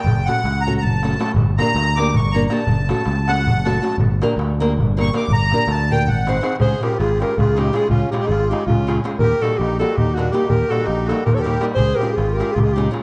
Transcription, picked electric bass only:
X:1
M:7/8
L:1/8
Q:1/4=161
K:none
V:1 name="Picked electric bass" clef=bass
^F,,,2 ^C,,2 F,,,3 | G,,,2 D,,2 G,,,3 | ^F,,,2 ^C,,2 F,,,3 | G,,,2 D,,2 G,,,3 |
G,,,2 D,,2 _A,,,3 | ^C,, z ^G,,,2 C,,3 | ^C,, z ^G,,,2 C,,3 | _E,, z _B,,,2 E,,3 |
_E,, z _B,,,2 E,,3 | ^C,, z ^G,,,2 C,,3 |]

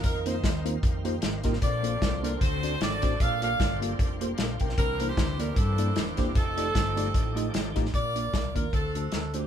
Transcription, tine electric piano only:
X:1
M:4/4
L:1/16
Q:"Swing" 1/4=152
K:Bb
V:1 name="Tine electric piano"
z2 [B,CEFc] z3 [B,CEFc] z3 [B,EFGc] z3 [B,EFGB] z | z2 [B,DFAc] z3 [B,DFAd] z3 [CD^FAd] z3 [CDFAc] z | z2 [B,FGAd] z3 [B,FGAf] z3 [B,FGAc] z [Af]2 [Bg]2- | [Bg]2 [B,D=EAc] z3 [B,DEAd] z3 [B,DEAd] z3 [B,DEAc] z |
z2 [A,EFGd] z3 [A,EFGd] z3 [A,EFGe] z3 [A,EFGA] z | z2 [B,DFd] z3 [B,DFd] z3 [A,D^Fc] z3 [A,DFc] z |]
V:2 name="Tine electric piano" clef=bass
z16 | B,,6 z2 D,6 z2 | B,,6 z8 z2 | C,6 z8 z2 |
z16 | B,,6 z2 D,6 z2 |]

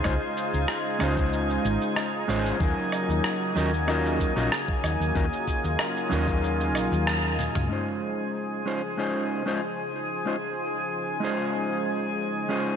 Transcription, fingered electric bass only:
X:1
M:4/4
L:1/16
Q:1/4=94
K:Db
V:1 name="Fingered electric bass" clef=bass
D,, z2 D,, z2 D,,4 A,,, z3 A,,, z | E,, z2 E,, z2 E,,4- E,, B,,, z2 E,, E,, | E,, z2 E,, z2 E,,4 B,,, E,,4 D,, | z16 |
z16 |]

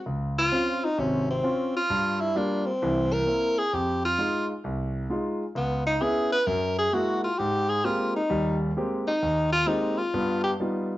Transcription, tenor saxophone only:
X:1
M:4/4
L:1/8
Q:"Swing" 1/4=131
K:Ab
V:1 name="Tenor saxophone"
z F2 E D C2 F- | F _F =D C2 B2 A | G F2 z4 z | _C E A _c B A _G F |
G A F E2 z2 E- | E F E F2 G z2 |]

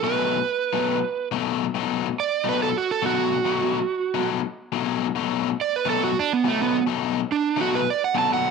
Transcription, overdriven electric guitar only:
X:1
M:4/4
L:1/8
Q:"Swing" 1/4=140
K:Bmix
V:1 name="Overdriven electric guitar" clef=bass
[B,,F,A,D] z2 [B,,F,A,D] z2 [B,,F,A,D] z | [B,,F,A,D] z2 [B,,F,A,D] z2 [B,,F,A,D] z | [B,,F,A,D] z2 [B,,F,A,D] z2 [B,,F,A,D] z | [B,,F,A,D] z2 [B,,F,A,D] z2 [B,,F,A,D] z |
[B,,F,A,D] z2 [B,,F,A,D] z2 [B,,F,A,D] z |]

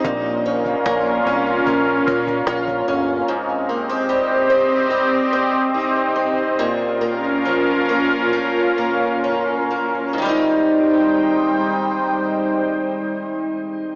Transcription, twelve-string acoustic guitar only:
X:1
M:4/4
L:1/16
Q:1/4=70
K:Ab
V:1 name="Twelve-string acoustic guitar"
B,,2 D2 B,2 D2 B,2 D2 F2 D2 | A,,2 B, C G,2 C2 G,2 C2 E2 C2 | B,,2 B,2 F,2 B,2 F,2 B,2 D2 B,2 | [A,,E,G,CE]16 |]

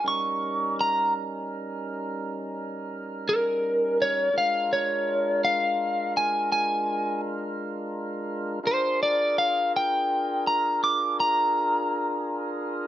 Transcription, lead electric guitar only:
X:1
M:12/8
L:1/8
Q:3/8=56
K:Bbmix
V:1 name="Lead electric guitar"
_d'2 b z6 B2 _d | f _d2 f2 a a2 z4 | c d f g2 b d' b4- b |]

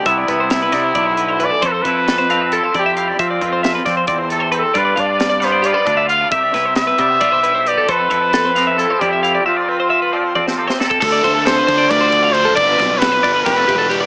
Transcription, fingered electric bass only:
X:1
M:7/8
L:1/8
Q:1/4=134
K:Flyd
V:1 name="Fingered electric bass" clef=bass
C,, C,,2 C, B,,,3 | F,, F,,4 F,,2 | F, F,,2 F, E,,3 | G,, G,,4 D,,2 |
C,, C,,2 C, B,,,3 | F,, F,,4 F,,2 | z6 z | D,, D,,2 D, D,,3 |
G,,, B,,,2 G,,, F,,, E,,,2 |]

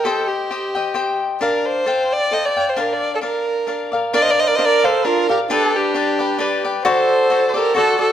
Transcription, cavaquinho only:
X:1
M:3/4
L:1/8
Q:"Swing" 1/4=133
K:Bb
V:1 name="Cavaquinho"
[Gceg]2 [Gceg] [ceg] [Gceg]2 | [DBdf]2 [Acfg]2 [Acfg] [cfg] | [DBdf]2 [DBdf]2 [DBdf] [Bdf] | [DBdf]2 [DBdf] [Bdf] [DBdf] [Bdf] |
[DG=Bd]2 [DGBd] [GBd] [DGBd] [GBd] | [^FAcd]2 [FAcd] [Acd] [FAcd] [Acd] |]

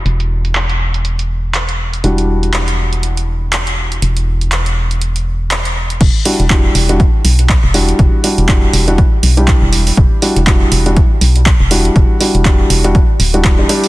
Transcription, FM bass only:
X:1
M:4/4
L:1/16
Q:"Swing 16ths" 1/4=121
K:Em
V:1 name="FM bass" clef=bass
E,,,16 | E,,,16 | E,,,16 | E,,, z2 E,,,2 z E,,,2 z2 B,,,2 z E,,,2 z |
E,,, z2 E,,,2 z E,,,2 z2 B,,,2 z E,,,2 z | E,,, z2 E,,,2 z E,,,2 z2 B,,,2 z E,,,2 z | E,,, z2 E,,,2 z E,,,2 z2 D,,,3 E,,, z2 |]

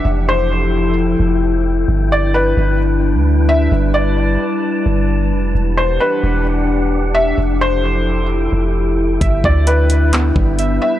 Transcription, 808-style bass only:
X:1
M:4/4
L:1/16
Q:1/4=131
K:Gmix
V:1 name="808-style bass" clef=bass
F,,,8- F,,,2 F,,,6 | G,,,6 G,,,4- G,,, D,,4- D,, | G,,,6 z4 G,,,4 F,,,2 | E,,,4 z2 E,,,8- E,,,2 |
F,,,8- F,,,2 F,,,6 | G,,,2 D,,8 G,,,4 z2 |]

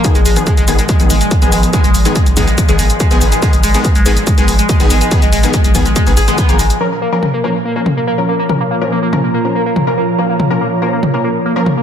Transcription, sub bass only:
X:1
M:4/4
L:1/16
Q:1/4=142
K:Bbphr
V:1 name="Sub bass" clef=bass
z A,,, A,,, z2 A,,, A,,, z2 A,,, A,,, z2 A,,, A,,, z | z A,,, A,,, z2 A,,, A,,, z2 A,,, A,,, z2 A,,, A,,, z | z A,,, A,,, z2 A,,, A,,, z2 A,,, A,,, z2 A,,, A,,, z | z A,,, A,,, z2 A,,, A,,, z2 A,,, A,,, z2 A,,, A,,, z |
z16 | z16 | z16 |]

